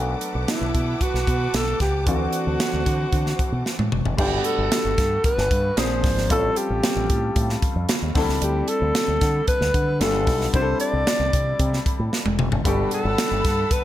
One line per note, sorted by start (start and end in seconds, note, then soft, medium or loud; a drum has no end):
0.00 0.14 B1 loud
0.00 1.76 F#3 medium
0.00 1.76 A3 medium
0.00 1.76 B3 medium
0.00 1.77 D4 soft
0.00 1.77 F#4 medium
0.00 2.04 B4 medium
0.00 2.04 F#5 medium
0.00 4.15 A5 medium
0.00 4.15 D6 medium
0.21 closed hi-hat medium
0.35 0.44 B1 medium
0.48 1.04 E4 medium
0.48 snare loud
0.48 closed hi-hat medium
0.61 0.71 B1 medium
0.75 0.94 B2 medium
0.75 kick medium
0.75 closed hi-hat medium
1.01 1.57 F#4 medium
1.01 kick medium
1.01 closed hi-hat medium
1.14 1.23 B1 medium
1.14 snare soft
1.27 1.46 B2 medium
1.27 kick medium
1.27 closed hi-hat medium
1.54 1.73 B1 medium
1.54 1.81 A4 loud
1.54 snare loud
1.54 closed hi-hat loud
1.80 2.07 C#2 medium
1.80 2.06 G4 medium
1.80 kick medium
1.80 snare soft
1.80 closed hi-hat medium
2.06 2.26 D2 loud
2.06 4.14 E3 medium
2.06 4.14 A3 medium
2.06 4.15 C4 medium
2.06 4.15 D4 medium
2.06 2.14 F4 medium
2.06 3.89 F#4 medium
2.06 4.17 C5 medium
2.06 4.17 F#5 medium
2.06 kick loud
2.06 closed hi-hat medium
2.15 4.19 F#4 medium
2.32 closed hi-hat medium
2.47 2.56 D2 medium
2.60 snare loud
2.60 closed hi-hat medium
2.74 2.83 D2 medium
2.86 3.05 D3 medium
2.86 kick medium
2.86 closed hi-hat medium
3.12 3.32 D3 medium
3.12 kick medium
3.12 closed hi-hat medium
3.26 snare soft
3.39 kick medium
3.39 closed hi-hat medium
3.52 3.62 B2 medium
3.66 snare medium
3.79 3.88 A2 medium
3.79 high tom medium
3.92 4.02 F1 medium
3.92 mid tom medium
4.05 4.15 F#1 medium
4.05 floor tom medium
4.17 4.38 G1 loud
4.17 5.74 G3 medium
4.17 5.74 A3 medium
4.17 5.74 B3 medium
4.17 5.74 D4 medium
4.17 4.26 F4 medium
4.17 4.47 G4 medium
4.17 kick loud
4.17 crash loud
4.26 5.78 F#4 medium
4.44 5.25 A4 medium
4.44 closed hi-hat medium
4.58 4.68 G1 loud
4.72 snare loud
4.72 closed hi-hat medium
4.85 4.94 G1 loud
4.98 5.17 G2 medium
4.98 kick medium
4.98 snare soft
4.98 closed hi-hat medium
5.24 5.80 B4 loud
5.24 kick loud
5.24 closed hi-hat medium
5.38 5.48 G1 loud
5.38 snare soft
5.51 5.70 G2 medium
5.51 kick medium
5.51 closed hi-hat medium
5.77 6.05 A#1 loud
5.77 6.30 F3 medium
5.77 6.30 A#3 medium
5.77 6.28 C4 medium
5.77 6.30 D4 medium
5.77 6.31 G#4 medium
5.77 6.31 C5 loud
5.77 snare loud
5.77 closed hi-hat loud
6.04 6.30 G#1 medium
6.04 kick loud
6.04 snare soft
6.04 open hi-hat medium
6.18 snare soft
6.29 6.49 A1 loud
6.29 8.11 G3 medium
6.29 8.12 C4 medium
6.29 8.12 C#4 medium
6.29 8.12 F4 medium
6.29 8.12 A4 medium
6.29 6.59 A4 loud
6.29 kick loud
6.29 closed hi-hat loud
6.56 7.63 G4 medium
6.56 closed hi-hat medium
6.70 6.80 A1 medium
6.83 snare loud
6.83 closed hi-hat medium
6.96 7.06 A1 loud
7.10 7.29 A2 medium
7.10 kick loud
7.10 closed hi-hat medium
7.36 7.55 A2 loud
7.36 kick loud
7.36 closed hi-hat medium
7.50 snare soft
7.62 kick loud
7.62 closed hi-hat medium
7.76 7.85 F2 medium
7.89 snare loud
7.89 closed hi-hat loud
8.02 8.12 D#2 medium
8.14 8.25 D2 loud
8.14 8.21 F#3 medium
8.14 9.97 C4 medium
8.14 9.97 D4 medium
8.14 9.97 E4 medium
8.14 9.98 A4 medium
8.14 kick loud
8.14 snare soft
8.14 open hi-hat medium
8.21 9.99 G3 medium
8.29 8.38 C#2 medium
8.29 snare soft
8.42 8.61 D2 loud
8.42 8.71 G4 medium
8.42 closed hi-hat loud
8.68 9.48 A4 loud
8.68 closed hi-hat medium
8.82 8.91 D2 loud
8.95 snare loud
8.95 closed hi-hat medium
9.08 9.18 D2 medium
9.21 9.40 D3 loud
9.21 kick medium
9.21 snare soft
9.21 closed hi-hat medium
9.48 9.97 B4 loud
9.48 kick loud
9.48 closed hi-hat medium
9.61 9.70 D2 medium
9.61 snare soft
9.74 10.02 D3 medium
9.74 kick medium
9.74 closed hi-hat medium
10.00 10.27 G1 loud
10.00 10.52 G3 medium
10.00 10.07 A3 soft
10.00 10.53 D4 medium
10.00 10.54 F4 medium
10.00 10.54 A4 medium
10.00 10.50 A4 medium
10.00 snare loud
10.00 closed hi-hat loud
10.07 10.57 B3 medium
10.27 10.46 B1 loud
10.27 kick loud
10.27 snare soft
10.27 open hi-hat medium
10.41 snare soft
10.53 10.73 C2 loud
10.53 12.61 G3 medium
10.53 12.61 C4 medium
10.53 12.62 D4 medium
10.53 12.62 E4 medium
10.53 10.61 G4 medium
10.53 10.79 C5 loud
10.53 kick loud
10.53 closed hi-hat medium
10.62 12.65 A4 medium
10.80 11.82 D5 loud
10.80 closed hi-hat medium
10.93 11.03 C2 medium
11.07 snare loud
11.07 closed hi-hat loud
11.20 11.29 C2 medium
11.33 11.52 C3 medium
11.33 kick medium
11.33 closed hi-hat medium
11.59 11.78 C3 medium
11.59 kick loud
11.59 closed hi-hat medium
11.73 snare soft
11.86 kick medium
11.86 closed hi-hat medium
11.99 12.09 A2 medium
12.13 snare medium
12.26 12.39 E1 medium
12.26 high tom medium
12.39 12.48 F1 medium
12.39 mid tom medium
12.52 12.62 F#1 medium
12.52 floor tom medium
12.64 12.84 G1 loud
12.64 13.84 G3 medium
12.64 13.84 B3 medium
12.64 13.84 D4 medium
12.64 13.84 F#4 medium
12.64 12.91 G4 medium
12.64 13.84 A4 medium
12.64 13.84 F#5 medium
12.64 13.84 A5 medium
12.64 13.84 B5 medium
12.64 kick loud
12.64 closed hi-hat medium
12.91 13.74 A4 medium
12.91 closed hi-hat medium
13.05 13.14 G1 loud
13.18 snare loud
13.18 closed hi-hat loud
13.31 13.41 G1 loud
13.45 13.64 G2 loud
13.45 kick medium
13.45 snare soft
13.45 closed hi-hat medium
13.71 13.84 B4 loud
13.71 kick loud
13.71 closed hi-hat medium